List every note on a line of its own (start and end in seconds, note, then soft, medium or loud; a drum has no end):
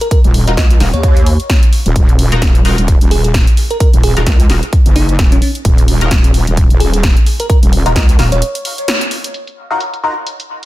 0.01 0.08 A#4 medium
0.01 closed hi-hat soft
0.11 0.20 A#4 medium
0.11 kick loud
0.11 closed hi-hat medium
0.24 0.45 D#1 loud
0.24 closed hi-hat soft
0.34 open hi-hat loud
0.47 0.56 D#1 medium
0.47 0.53 D#4 loud
0.47 0.53 F4 medium
0.47 0.53 F#4 medium
0.47 0.53 A#4 loud
0.47 0.54 D#5 medium
0.47 closed hi-hat soft
0.57 0.79 C#2 loud
0.57 0.66 D#5 medium
0.57 kick loud
0.57 snare loud
0.57 closed hi-hat medium
0.70 closed hi-hat soft
0.80 0.91 D#1 medium
0.80 0.87 D#4 medium
0.80 0.87 F4 medium
0.80 0.87 F#4 medium
0.80 0.87 A#4 medium
0.80 snare medium
0.80 open hi-hat loud
0.93 1.38 D#2 medium
0.93 1.57 C#5 medium
0.93 closed hi-hat soft
1.03 kick loud
1.03 closed hi-hat medium
1.17 closed hi-hat soft
1.26 open hi-hat loud
1.40 closed hi-hat soft
1.50 kick loud
1.50 snare loud
1.50 closed hi-hat medium
1.63 closed hi-hat soft
1.73 open hi-hat loud
1.86 1.94 D#1 medium
1.86 closed hi-hat soft
1.96 2.30 D#1 medium
1.96 kick loud
1.96 closed hi-hat medium
2.09 closed hi-hat soft
2.19 open hi-hat loud
2.32 2.40 D#1 loud
2.32 2.40 D#4 loud
2.32 2.40 F4 medium
2.32 2.40 F#4 medium
2.32 2.40 A#4 loud
2.32 closed hi-hat soft
2.42 2.76 D#1 medium
2.42 kick loud
2.42 snare loud
2.42 closed hi-hat medium
2.55 closed hi-hat medium
2.65 2.76 D#4 medium
2.65 2.76 F4 medium
2.65 2.76 F#4 medium
2.65 2.76 A#4 loud
2.65 open hi-hat loud
2.78 2.99 D#1 medium
2.78 closed hi-hat soft
2.88 kick loud
2.88 closed hi-hat medium
3.01 3.45 D#1 medium
3.01 closed hi-hat soft
3.11 3.20 G#4 medium
3.11 open hi-hat loud
3.24 3.31 G#4 medium
3.24 closed hi-hat soft
3.34 kick loud
3.34 snare loud
3.34 closed hi-hat medium
3.47 closed hi-hat medium
3.57 open hi-hat loud
3.70 3.77 A#4 medium
3.70 closed hi-hat soft
3.80 3.89 A#4 medium
3.80 kick loud
3.80 closed hi-hat medium
3.94 4.15 D#1 loud
3.94 closed hi-hat medium
4.03 4.12 G#4 medium
4.03 open hi-hat loud
4.17 4.25 D#1 loud
4.17 4.22 D#4 loud
4.17 4.22 F4 medium
4.17 4.22 F#4 medium
4.17 4.23 G#4 medium
4.17 4.22 A#4 loud
4.17 closed hi-hat soft
4.26 4.48 C#2 medium
4.26 kick loud
4.26 snare loud
4.26 closed hi-hat medium
4.40 closed hi-hat medium
4.50 4.61 D#1 loud
4.50 4.57 D#4 medium
4.50 4.57 F4 medium
4.50 4.57 F#4 medium
4.50 4.57 A#4 medium
4.50 snare medium
4.50 open hi-hat loud
4.63 closed hi-hat soft
4.73 kick loud
4.73 closed hi-hat medium
4.86 5.17 F#1 medium
4.86 closed hi-hat soft
4.96 5.12 D#4 medium
4.96 open hi-hat loud
5.09 closed hi-hat soft
5.19 5.40 D#1 medium
5.19 kick loud
5.19 snare loud
5.19 closed hi-hat medium
5.32 5.38 C#4 medium
5.32 closed hi-hat medium
5.42 5.50 C#4 medium
5.42 open hi-hat loud
5.55 closed hi-hat soft
5.65 5.99 D#1 loud
5.65 kick loud
5.65 closed hi-hat medium
5.78 closed hi-hat medium
5.88 open hi-hat loud
6.01 6.10 D#1 loud
6.01 6.10 D#4 loud
6.01 6.10 F4 medium
6.01 6.10 F#4 medium
6.01 6.10 A#4 loud
6.01 closed hi-hat soft
6.11 6.45 D#1 loud
6.11 kick loud
6.11 snare loud
6.11 closed hi-hat medium
6.24 closed hi-hat medium
6.34 open hi-hat loud
6.47 6.68 D#1 medium
6.47 closed hi-hat soft
6.57 kick loud
6.57 closed hi-hat medium
6.70 7.15 D#1 medium
6.70 closed hi-hat medium
6.80 6.89 G#4 medium
6.80 open hi-hat loud
6.93 7.00 G#4 medium
6.93 closed hi-hat soft
7.03 kick loud
7.03 snare loud
7.03 closed hi-hat medium
7.17 closed hi-hat medium
7.26 open hi-hat loud
7.40 7.46 A#4 medium
7.40 closed hi-hat soft
7.50 7.58 A#4 medium
7.50 kick loud
7.50 closed hi-hat medium
7.63 7.84 D#1 loud
7.63 closed hi-hat medium
7.73 open hi-hat loud
7.86 7.94 D#1 loud
7.86 7.91 D#4 loud
7.86 7.91 F4 medium
7.86 7.91 F#4 medium
7.86 7.91 A#4 loud
7.86 7.92 D#5 medium
7.86 closed hi-hat soft
7.96 8.17 C#2 loud
7.96 8.04 D#5 medium
7.96 kick loud
7.96 snare loud
7.96 closed hi-hat medium
8.09 closed hi-hat medium
8.19 8.30 D#1 loud
8.19 8.26 D#4 medium
8.19 8.26 F4 medium
8.19 8.26 F#4 medium
8.19 8.26 A#4 medium
8.19 snare medium
8.19 open hi-hat loud
8.32 8.42 D#1 medium
8.32 8.96 C#5 medium
8.32 closed hi-hat soft
8.42 closed hi-hat medium
8.55 closed hi-hat medium
8.65 open hi-hat loud
8.78 closed hi-hat soft
8.88 snare loud
8.88 closed hi-hat medium
9.01 closed hi-hat medium
9.11 open hi-hat loud
9.24 closed hi-hat soft
9.34 closed hi-hat medium
9.47 closed hi-hat soft
9.70 9.79 D#4 medium
9.70 9.79 F4 medium
9.70 9.79 F#4 medium
9.70 9.79 A#4 loud
9.80 closed hi-hat medium
9.94 closed hi-hat medium
10.03 10.15 D#4 medium
10.03 10.15 F4 medium
10.03 10.14 F#4 medium
10.03 10.15 A#4 loud
10.27 closed hi-hat medium
10.40 closed hi-hat medium